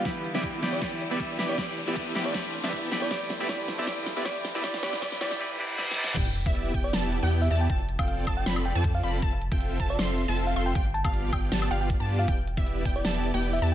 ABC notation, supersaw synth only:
X:1
M:4/4
L:1/16
Q:1/4=157
K:Ephr
V:1 name="Supersaw synth"
[B,EGdg] z2 [B,EGde]3 [B,EGdg]2 [B,EGdg] z2 [B,EGde]3 [B,EGdg]2 | [B,EGdg] z2 [B,EGde]3 [B,EGdg]2 [B,EGdg] z2 [B,EGde]3 [B,EGdg]2 | [B,EGdg] z2 [B,EGde] [B,EGdg] z2 [B,EGde] [B,EGdg] z2 [B,EGde] [B,EGdg] z2 [B,EGde] | [B,EGdg] z [B,EGdg] z [B,EGdg] z [B,EGdg] z8 z |
[B,EGdg] z2 [B,EGde]3 [B,EGdg]2 [B,EGda]3 [B,EGdg]3 [B,EGda]2 | [CFAda] z2 [CFAdg]3 [CFAda]2 [CFAdb]3 [CFAda]3 [CFAdb]2 | [CFAea] z2 [CFAeg]3 [CFAea]2 [CFAec']3 [CFAea]3 [CFAec']2 | [B,FGdg] z2 [B,FGdf]3 [B,FGdg]2 [B,FGda]2 [B,FGdf]3 [B,FGda]3 |
[B,EGdg] z2 [B,EGde]3 [B,EGdg]2 [B,EGda]3 [B,EGdg]3 [B,EGda]2 |]